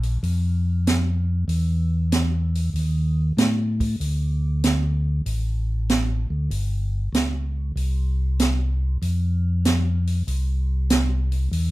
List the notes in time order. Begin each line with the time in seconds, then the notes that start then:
Already playing: A#1
0.03 open hi-hat
0.23 F2, open hi-hat
0.87 snare, closed hi-hat
1.48 E2, open hi-hat
2.12 snare, closed hi-hat
2.55 open hi-hat
2.73 D#2, open hi-hat
3.37 A2, snare, closed hi-hat
3.80 kick, open hi-hat
4.00 D2, open hi-hat
4.64 snare, closed hi-hat
5.26 A1, open hi-hat
5.89 snare, closed hi-hat
6.30 D2
6.51 G1, open hi-hat
7.13 C#2, snare, closed hi-hat
7.76 C2, open hi-hat
8.39 snare, closed hi-hat
9.02 F2, open hi-hat
9.65 snare, closed hi-hat
10.07 open hi-hat
10.27 C2, open hi-hat
10.90 snare, closed hi-hat
11.32 open hi-hat
11.51 E2, open hi-hat